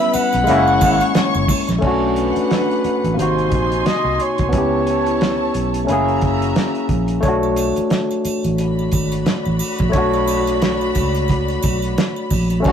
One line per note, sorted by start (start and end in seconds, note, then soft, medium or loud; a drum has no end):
0.00 0.43 G3 medium
0.00 0.44 B3 medium
0.00 0.46 C#4 medium
0.00 0.47 E4 medium
0.00 0.45 B4 medium
0.00 0.14 E5 loud
0.00 0.45 B5 loud
0.00 closed hi-hat soft
0.00 muted triangle soft
0.13 1.45 F#5 loud
0.13 muted fingered electric bass stroke soft
0.13 closed hi-hat medium
0.13 triangle medium
0.33 0.47 B1 medium
0.33 closed hi-hat medium
0.33 muted triangle soft
0.44 0.98 C#3 medium
0.44 1.78 G#3 medium
0.44 1.79 A#3 medium
0.44 0.98 A#3 medium
0.44 0.98 E4 medium
0.44 muted triangle soft
0.48 0.78 F#1 medium
0.48 1.80 C#4 medium
0.48 1.82 E4 medium
0.48 1.80 C#5 medium
0.48 1.80 C#6 medium
0.48 closed hi-hat medium
0.68 muted triangle soft
0.81 0.99 G#1 medium
0.81 kick loud
0.81 closed hi-hat medium
0.81 triangle medium
1.01 closed hi-hat medium
1.01 muted triangle soft
1.15 muted fingered electric bass stroke soft
1.15 snare loud
1.15 closed hi-hat medium
1.15 muted triangle soft
1.35 1.48 F#1 medium
1.35 muted triangle soft
1.48 kick medium
1.48 open hi-hat medium
1.48 triangle medium
1.67 1.81 A#1 medium
1.67 snare soft
1.67 closed hi-hat medium
1.67 muted triangle soft
1.79 3.13 A3 medium
1.79 3.14 C#4 medium
1.79 kick medium
1.79 crash medium
1.83 2.31 B1 medium
1.83 3.15 D4 medium
1.83 3.16 D4 medium
1.83 3.17 F#4 medium
1.83 3.15 B4 medium
1.83 3.15 F#5 medium
2.16 3.15 B4 medium
2.16 closed hi-hat medium
2.36 muted fingered electric bass stroke soft
2.36 closed hi-hat soft
2.51 snare loud
2.51 closed hi-hat medium
2.71 closed hi-hat soft
2.84 muted fingered electric bass stroke soft
2.84 closed hi-hat medium
3.04 3.17 A1 medium
3.04 closed hi-hat medium
3.14 3.52 G#1 medium
3.14 4.50 C3 medium
3.14 4.48 A#3 medium
3.14 4.50 D#4 medium
3.14 4.50 G#5 medium
3.14 4.50 C6 medium
3.19 4.51 D#4 medium
3.19 4.52 F#4 medium
3.19 3.88 C5 medium
3.19 closed hi-hat medium
3.38 closed hi-hat soft
3.52 3.82 A#1 medium
3.52 kick medium
3.52 closed hi-hat medium
3.72 closed hi-hat soft
3.86 4.23 D#5 loud
3.86 muted fingered electric bass stroke soft
3.86 snare medium
3.86 closed hi-hat medium
4.05 4.18 C2 medium
4.20 6.23 C#5 medium
4.20 closed hi-hat medium
4.38 4.53 C2 medium
4.38 kick medium
4.38 closed hi-hat medium
4.49 5.83 B3 medium
4.49 5.85 C#4 medium
4.49 5.85 E4 medium
4.49 5.85 C#5 medium
4.49 5.85 A5 medium
4.49 closed hi-hat medium
4.53 5.51 C#2 medium
4.53 5.86 E4 medium
4.53 kick loud
4.57 5.88 G4 medium
4.87 closed hi-hat medium
5.07 closed hi-hat soft
5.21 snare loud
5.21 closed hi-hat medium
5.54 5.85 B1 medium
5.54 closed hi-hat medium
5.74 closed hi-hat medium
5.85 5.94 A3 medium
5.85 7.20 C#4 medium
5.85 closed hi-hat medium
5.89 6.19 F#1 medium
5.89 7.22 A#3 medium
5.89 7.22 E4 medium
5.89 7.21 F#4 medium
5.89 7.23 G#4 medium
5.89 7.21 E5 medium
5.89 7.21 A#5 medium
6.08 closed hi-hat soft
6.21 6.53 F#1 medium
6.21 kick medium
6.21 closed hi-hat medium
6.42 closed hi-hat medium
6.56 snare loud
6.56 closed hi-hat medium
6.75 closed hi-hat soft
6.89 7.20 A#1 medium
6.89 kick medium
6.89 closed hi-hat medium
7.08 closed hi-hat medium
7.20 7.72 B1 medium
7.20 9.88 A3 medium
7.20 9.90 C#5 medium
7.20 kick medium
7.20 closed hi-hat medium
7.20 muted triangle soft
7.25 9.91 D4 medium
7.25 9.93 F#4 medium
7.43 muted triangle soft
7.56 closed hi-hat medium
7.56 triangle medium
7.76 muted fingered electric bass stroke soft
7.76 closed hi-hat medium
7.76 muted triangle soft
7.90 snare loud
7.90 closed hi-hat medium
7.90 muted triangle medium
8.11 closed hi-hat soft
8.11 muted triangle soft
8.25 muted fingered electric bass stroke soft
8.25 closed hi-hat medium
8.25 triangle medium
8.44 8.88 A1 medium
8.44 closed hi-hat soft
8.44 muted triangle soft
8.58 12.61 F#4 medium
8.58 12.61 D5 medium
8.58 12.61 B5 medium
8.58 closed hi-hat medium
8.58 muted triangle soft
8.79 muted triangle soft
8.92 9.23 G#1 medium
8.92 kick medium
8.92 closed hi-hat medium
8.92 triangle medium
9.12 closed hi-hat medium
9.12 muted triangle soft
9.26 snare loud
9.26 closed hi-hat medium
9.26 muted triangle soft
9.46 9.59 A1 medium
9.46 muted triangle soft
9.59 open hi-hat soft
9.59 triangle medium
9.78 9.93 A#1 medium
9.78 kick medium
9.78 closed hi-hat medium
9.78 muted triangle soft
9.90 12.59 A3 medium
9.90 12.60 C#5 medium
9.90 closed hi-hat loud
9.90 muted triangle soft
9.94 10.92 B1 medium
9.94 12.62 D4 medium
9.94 12.63 F#4 medium
9.94 kick loud
10.14 closed hi-hat soft
10.14 muted triangle soft
10.28 closed hi-hat medium
10.28 triangle medium
10.47 closed hi-hat medium
10.47 muted triangle soft
10.62 snare loud
10.62 closed hi-hat medium
10.62 muted triangle soft
10.81 muted triangle soft
10.95 11.57 C#2 medium
10.95 kick medium
10.95 closed hi-hat medium
10.95 triangle medium
11.15 closed hi-hat soft
11.15 muted triangle soft
11.28 kick medium
11.28 closed hi-hat medium
11.28 muted triangle soft
11.48 closed hi-hat soft
11.48 muted triangle soft
11.63 11.94 B1 medium
11.63 kick medium
11.63 closed hi-hat medium
11.63 triangle medium
11.82 closed hi-hat medium
11.82 muted triangle soft
11.98 snare loud
11.98 closed hi-hat medium
11.98 muted triangle soft
12.16 muted triangle soft
12.30 12.62 A#1 medium
12.30 kick medium
12.30 open hi-hat soft
12.30 triangle medium
12.50 closed hi-hat medium
12.50 muted triangle soft
12.60 12.72 A3 medium
12.60 12.72 C#4 medium
12.64 12.72 B1 loud
12.64 12.72 D4 medium
12.64 12.72 F#4 medium
12.64 12.72 B4 medium
12.64 12.72 B5 medium
12.64 kick loud
12.64 crash medium
12.64 muted triangle soft